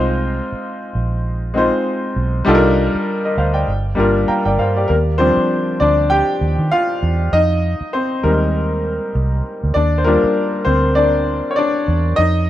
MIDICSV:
0, 0, Header, 1, 4, 480
1, 0, Start_track
1, 0, Tempo, 606673
1, 32, Time_signature, 4, 2, 24, 8
1, 9888, End_track
2, 0, Start_track
2, 0, Title_t, "Grand piano"
2, 0, Program_c, 0, 0
2, 0, Control_c, 0, 64, 127
2, 0, Note_on_c, 0, 56, 84
2, 0, Note_on_c, 0, 60, 72
2, 0, Note_on_c, 0, 63, 75
2, 0, Note_on_c, 0, 65, 76
2, 0, Note_on_c, 0, 72, 89
2, 0, Note_on_c, 0, 77, 70
2, 619, Note_off_c, 0, 56, 0
2, 625, Note_off_c, 0, 60, 0
2, 625, Note_off_c, 0, 63, 0
2, 631, Note_off_c, 0, 65, 0
2, 632, Note_off_c, 0, 72, 0
2, 1217, Note_on_c, 0, 56, 75
2, 1224, Note_on_c, 0, 60, 68
2, 1233, Note_on_c, 0, 63, 67
2, 1241, Note_on_c, 0, 65, 65
2, 1246, Note_on_c, 0, 72, 76
2, 1856, Note_off_c, 0, 56, 0
2, 1860, Note_off_c, 0, 60, 0
2, 1864, Note_off_c, 0, 63, 0
2, 1868, Note_off_c, 0, 65, 0
2, 1871, Note_off_c, 0, 72, 0
2, 1935, Note_on_c, 0, 55, 92
2, 1946, Note_on_c, 0, 62, 87
2, 1950, Note_on_c, 0, 63, 82
2, 1957, Note_on_c, 0, 65, 85
2, 1960, Control_c, 0, 64, 0
2, 1964, Note_on_c, 0, 69, 87
2, 1966, Note_off_c, 0, 77, 0
2, 2016, Note_on_c, 0, 70, 101
2, 2017, Note_off_c, 0, 69, 0
2, 2087, Control_c, 0, 64, 127
2, 2463, Note_off_c, 0, 70, 0
2, 2572, Note_on_c, 0, 75, 52
2, 2578, Note_on_c, 0, 70, 42
2, 2667, Note_off_c, 0, 75, 0
2, 2670, Note_off_c, 0, 70, 0
2, 2673, Note_on_c, 0, 77, 65
2, 2675, Note_on_c, 0, 72, 57
2, 2780, Note_off_c, 0, 55, 0
2, 2785, Note_off_c, 0, 62, 0
2, 2787, Note_off_c, 0, 63, 0
2, 2791, Note_off_c, 0, 65, 0
2, 2799, Note_on_c, 0, 79, 60
2, 2802, Note_on_c, 0, 74, 50
2, 2804, Note_off_c, 0, 77, 0
2, 2805, Note_off_c, 0, 72, 0
2, 2921, Control_c, 0, 64, 0
2, 3033, Note_off_c, 0, 79, 0
2, 3034, Note_off_c, 0, 74, 0
2, 3059, Control_c, 0, 64, 127
2, 3126, Note_on_c, 0, 55, 73
2, 3133, Note_on_c, 0, 58, 64
2, 3140, Note_on_c, 0, 62, 68
2, 3152, Note_on_c, 0, 65, 67
2, 3160, Note_on_c, 0, 70, 82
2, 3386, Note_on_c, 0, 79, 64
2, 3386, Note_on_c, 0, 82, 54
2, 3392, Note_on_c, 0, 77, 47
2, 3396, Note_off_c, 0, 70, 0
2, 3512, Note_off_c, 0, 79, 0
2, 3521, Note_off_c, 0, 82, 0
2, 3523, Note_on_c, 0, 79, 62
2, 3524, Note_off_c, 0, 77, 0
2, 3532, Note_on_c, 0, 74, 54
2, 3560, Note_off_c, 0, 55, 0
2, 3564, Note_off_c, 0, 58, 0
2, 3568, Note_off_c, 0, 62, 0
2, 3573, Note_off_c, 0, 65, 0
2, 3623, Note_off_c, 0, 79, 0
2, 3627, Note_off_c, 0, 74, 0
2, 3631, Note_on_c, 0, 77, 65
2, 3636, Note_on_c, 0, 72, 51
2, 3766, Note_off_c, 0, 72, 0
2, 3769, Note_on_c, 0, 74, 54
2, 3777, Note_on_c, 0, 67, 48
2, 3856, Note_off_c, 0, 77, 0
2, 3859, Note_on_c, 0, 70, 83
2, 3874, Note_on_c, 0, 58, 62
2, 3881, Control_c, 0, 64, 0
2, 3915, Note_off_c, 0, 70, 0
2, 3927, Note_off_c, 0, 58, 0
2, 3998, Note_off_c, 0, 74, 0
2, 4002, Note_off_c, 0, 67, 0
2, 4010, Control_c, 0, 64, 127
2, 4098, Note_on_c, 0, 72, 83
2, 4104, Note_on_c, 0, 53, 53
2, 4108, Note_on_c, 0, 55, 47
2, 4114, Note_on_c, 0, 60, 67
2, 4115, Note_on_c, 0, 62, 60
2, 4442, Note_off_c, 0, 53, 0
2, 4444, Note_off_c, 0, 55, 0
2, 4448, Note_off_c, 0, 62, 0
2, 4562, Note_off_c, 0, 60, 0
2, 4588, Note_on_c, 0, 74, 86
2, 4600, Note_off_c, 0, 72, 0
2, 4605, Note_on_c, 0, 62, 70
2, 4822, Note_off_c, 0, 62, 0
2, 4825, Note_on_c, 0, 79, 89
2, 4838, Note_off_c, 0, 74, 0
2, 4838, Note_on_c, 0, 67, 73
2, 5284, Note_off_c, 0, 67, 0
2, 5313, Note_on_c, 0, 77, 91
2, 5320, Note_on_c, 0, 65, 67
2, 5324, Note_off_c, 0, 79, 0
2, 5765, Note_off_c, 0, 65, 0
2, 5799, Note_on_c, 0, 75, 90
2, 5805, Control_c, 0, 64, 0
2, 5808, Note_off_c, 0, 77, 0
2, 5809, Note_on_c, 0, 63, 66
2, 5925, Control_c, 0, 64, 127
2, 6250, Note_off_c, 0, 63, 0
2, 6275, Note_on_c, 0, 72, 81
2, 6288, Note_on_c, 0, 60, 60
2, 6291, Note_off_c, 0, 75, 0
2, 6329, Note_off_c, 0, 72, 0
2, 6340, Note_off_c, 0, 60, 0
2, 6513, Note_on_c, 0, 55, 53
2, 6515, Note_on_c, 0, 70, 77
2, 6517, Note_on_c, 0, 56, 52
2, 6523, Note_on_c, 0, 63, 60
2, 6524, Note_on_c, 0, 58, 61
2, 7202, Note_off_c, 0, 55, 0
2, 7204, Note_off_c, 0, 56, 0
2, 7207, Note_off_c, 0, 63, 0
2, 7208, Note_off_c, 0, 58, 0
2, 7443, Note_off_c, 0, 70, 0
2, 7706, Note_on_c, 0, 74, 88
2, 7724, Control_c, 0, 64, 0
2, 7724, Note_on_c, 0, 62, 63
2, 7860, Control_c, 0, 64, 127
2, 7896, Note_on_c, 0, 72, 62
2, 7899, Note_off_c, 0, 62, 0
2, 7909, Note_off_c, 0, 74, 0
2, 7947, Note_on_c, 0, 70, 85
2, 7948, Note_off_c, 0, 72, 0
2, 7957, Note_on_c, 0, 65, 55
2, 7962, Note_on_c, 0, 55, 49
2, 7970, Note_on_c, 0, 58, 61
2, 7970, Note_on_c, 0, 62, 64
2, 8409, Note_off_c, 0, 58, 0
2, 8423, Note_on_c, 0, 72, 84
2, 8443, Note_on_c, 0, 60, 62
2, 8444, Note_off_c, 0, 70, 0
2, 8661, Note_off_c, 0, 60, 0
2, 8665, Note_on_c, 0, 74, 83
2, 8670, Note_off_c, 0, 62, 0
2, 8675, Note_off_c, 0, 72, 0
2, 8682, Note_on_c, 0, 62, 63
2, 9080, Note_off_c, 0, 62, 0
2, 9105, Note_on_c, 0, 73, 68
2, 9115, Note_off_c, 0, 74, 0
2, 9146, Note_on_c, 0, 74, 84
2, 9152, Note_off_c, 0, 73, 0
2, 9166, Note_on_c, 0, 62, 70
2, 9601, Note_off_c, 0, 65, 0
2, 9604, Note_off_c, 0, 55, 0
2, 9607, Note_off_c, 0, 62, 0
2, 9623, Note_on_c, 0, 75, 93
2, 9635, Note_on_c, 0, 63, 71
2, 9643, Note_off_c, 0, 74, 0
2, 9643, Control_c, 0, 64, 0
2, 9786, Control_c, 0, 64, 127
2, 9888, Note_off_c, 0, 63, 0
2, 9888, Note_off_c, 0, 75, 0
2, 9888, End_track
3, 0, Start_track
3, 0, Title_t, "Fingered electric bass"
3, 0, Program_c, 1, 33
3, 0, Note_on_c, 1, 36, 96
3, 314, Note_off_c, 1, 36, 0
3, 752, Note_on_c, 1, 34, 77
3, 1340, Note_off_c, 1, 34, 0
3, 1711, Note_on_c, 1, 35, 81
3, 1914, Note_off_c, 1, 35, 0
3, 1956, Note_on_c, 1, 36, 81
3, 2275, Note_off_c, 1, 36, 0
3, 2670, Note_on_c, 1, 38, 76
3, 2874, Note_off_c, 1, 38, 0
3, 2910, Note_on_c, 1, 31, 80
3, 3114, Note_off_c, 1, 31, 0
3, 3152, Note_on_c, 1, 31, 75
3, 3355, Note_off_c, 1, 31, 0
3, 3526, Note_on_c, 1, 31, 77
3, 3613, Note_off_c, 1, 31, 0
3, 3628, Note_on_c, 1, 43, 80
3, 3833, Note_off_c, 1, 43, 0
3, 3874, Note_on_c, 1, 39, 87
3, 4195, Note_off_c, 1, 39, 0
3, 4596, Note_on_c, 1, 38, 73
3, 4916, Note_off_c, 1, 38, 0
3, 5073, Note_on_c, 1, 39, 84
3, 5191, Note_off_c, 1, 39, 0
3, 5211, Note_on_c, 1, 51, 85
3, 5297, Note_off_c, 1, 51, 0
3, 5559, Note_on_c, 1, 40, 85
3, 5760, Note_off_c, 1, 40, 0
3, 5797, Note_on_c, 1, 41, 92
3, 6117, Note_off_c, 1, 41, 0
3, 6520, Note_on_c, 1, 39, 70
3, 7106, Note_off_c, 1, 39, 0
3, 7240, Note_on_c, 1, 36, 89
3, 7441, Note_off_c, 1, 36, 0
3, 7623, Note_on_c, 1, 38, 79
3, 7704, Note_off_c, 1, 38, 0
3, 7720, Note_on_c, 1, 39, 96
3, 8038, Note_off_c, 1, 39, 0
3, 8437, Note_on_c, 1, 38, 74
3, 9023, Note_off_c, 1, 38, 0
3, 9400, Note_on_c, 1, 40, 93
3, 9599, Note_off_c, 1, 40, 0
3, 9640, Note_on_c, 1, 41, 93
3, 9888, Note_off_c, 1, 41, 0
3, 9888, End_track
4, 0, Start_track
4, 0, Title_t, "Muted fingered electric bass strokes"
4, 414, Note_on_c, 9, 29, 41
4, 493, Note_off_c, 9, 29, 0
4, 2331, Note_on_c, 9, 29, 41
4, 2410, Note_off_c, 9, 29, 0
4, 4249, Note_on_c, 9, 29, 40
4, 4328, Note_off_c, 9, 29, 0
4, 6177, Note_on_c, 9, 29, 41
4, 6256, Note_off_c, 9, 29, 0
4, 8099, Note_on_c, 9, 29, 40
4, 8178, Note_off_c, 9, 29, 0
4, 9888, End_track
0, 0, End_of_file